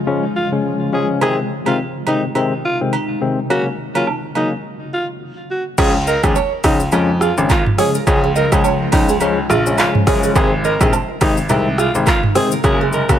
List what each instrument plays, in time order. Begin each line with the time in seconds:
Already playing: ambient pad C#3 F3 G#3 F4
0.07 tine electric piano C#3 F3 G#3 C#4
0.36 alto saxophone F4
0.52 tine electric piano C#3 F3 G#3 C#4
0.92 tine electric piano C#3 F3 G#3 C#4, alto saxophone G#4
1.21 tine electric piano C3 D#3 G#3 C4, ambient pad C3 D#3 D#4, alto saxophone G#4, high agogo
1.66 tine electric piano C3 D#3 G#3 C4, alto saxophone F4, high agogo
2.07 tine electric piano C3 D#3 G#3 C4, alto saxophone D#4, high agogo
2.35 tine electric piano C3 D#3 G#3 C4, high agogo
2.65 alto saxophone F4
2.81 tine electric piano C3 D#3 G#3 C4
2.93 high agogo
3.21 tine electric piano C3 D#3 G#3 C4
3.50 tine electric piano C#3 F#3 A#3 C#4, ambient pad C#3 F#3 A#3 F#4, alto saxophone F#4, high agogo
3.95 tine electric piano C#3 F#3 A#3 C#4, alto saxophone F4, high agogo
4.07 low woodblock
4.35 tine electric piano C#3 F#3 A#3 C#4, alto saxophone D#4, high agogo
4.94 alto saxophone F4
5.51 alto saxophone F#4
5.78 grand piano C#2, tine electric piano C#3 F3 G#3 C#4, ambient pad C#3 F3 G#3 F4, alto saxophone G#4, nylon-string guitar C#5, kick, crash, high agogo, shaker
6.07 alto saxophone A#4, nylon-string guitar D#5, shaker
6.23 grand piano D#2, tine electric piano C#3 F3 G#3 C#4, alto saxophone G#4, kick, cross-stick, high agogo, shaker
6.36 nylon-string guitar C#5, low woodblock, shaker
6.64 grand piano C#2, tine electric piano C#3 F3 G#3 C#4, alto saxophone D#4, kick, cross-stick, open hi-hat, high agogo, shaker
6.80 shaker
6.92 grand piano F2, tine electric piano C#3 F3 G#3 C#4, nylon-string guitar A#4, high agogo, shaker
7.21 alto saxophone F4, nylon-string guitar G#4, cross-stick, shaker
7.37 grand piano G#1, tine electric piano C#3 F3 G#3 C#4, shaker
7.49 alto saxophone F4, nylon-string guitar A#4, kick, clap, high agogo, shaker
7.66 mid tom
7.78 tine electric piano C#3 F3 G#3 C#4, alto saxophone G#4, nylon-string guitar C#5, cross-stick, open hi-hat, shaker
7.95 nylon-string guitar A#4, shaker
8.07 grand piano C#2, tine electric piano C#3 F3 G#3 C#4, alto saxophone G#4, kick, high agogo, shaker
8.24 nylon-string guitar G#4
8.36 alto saxophone A#4, nylon-string guitar D#5, shaker
8.52 grand piano C#2, tine electric piano C#3 F3 G#3 C#4, alto saxophone G#4, kick, cross-stick, high agogo, shaker
8.64 nylon-string guitar C#5, low woodblock, shaker
8.92 grand piano C#2, tine electric piano C#3 F3 G#3 C#4, alto saxophone D#4, nylon-string guitar A#4, kick, open hi-hat, high agogo, shaker
9.09 nylon-string guitar G#4, shaker
9.20 tine electric piano C#3 F3 G#3 C#4, high agogo, shaker
9.50 grand piano A#1, alto saxophone F4, nylon-string guitar G#4, cross-stick, shaker
9.66 tine electric piano C#3 F3 G#3 C#4, shaker
9.78 alto saxophone F4, nylon-string guitar A#4, clap, high agogo, shaker
9.95 mid tom
10.07 grand piano F#1, tine electric piano C#3 F3 G#3 C#4, alto saxophone G#4, nylon-string guitar C#5, kick, cross-stick, open hi-hat, shaker
10.23 nylon-string guitar G#4, shaker
10.35 grand piano G#1, tine electric piano C3 D#3 G#3 C4, ambient pad C3 D#3 G#3 D#4, alto saxophone G#4, nylon-string guitar C5, kick, high agogo, shaker
10.64 alto saxophone A#4, nylon-string guitar D#5, shaker
10.80 grand piano A#1, tine electric piano C3 D#3 G#3 C4, alto saxophone G#4, kick, cross-stick, high agogo, shaker
10.93 nylon-string guitar C5, low woodblock, shaker
11.21 grand piano G#1, tine electric piano C3 D#3 G#3 C4, alto saxophone D#4, kick, cross-stick, open hi-hat, high agogo, shaker
11.37 shaker
11.49 grand piano C2, tine electric piano C3 D#3 G#3 C4, nylon-string guitar A#4, high agogo, shaker
11.78 alto saxophone F4, nylon-string guitar G#4, cross-stick, shaker
11.95 grand piano G#1, tine electric piano C3 D#3 G#3 C4, shaker
12.06 alto saxophone F4, nylon-string guitar A#4, kick, clap, high agogo, shaker
12.23 mid tom
12.35 tine electric piano C3 D#3 G#3 C4, alto saxophone G#4, nylon-string guitar C5, cross-stick, open hi-hat, shaker
12.52 nylon-string guitar A#4, shaker
12.64 grand piano F#1, tine electric piano C#3 F#3 A#3 C#4, ambient pad C#3 F#3 A#3 F#4, alto saxophone G#4, kick, cross-stick, high agogo, shaker
12.81 nylon-string guitar G#4
12.93 alto saxophone A#4, nylon-string guitar D#5, shaker
13.09 grand piano F#1, tine electric piano C#3 F#3 A#3 C#4, alto saxophone F#4, kick, cross-stick, high agogo, shaker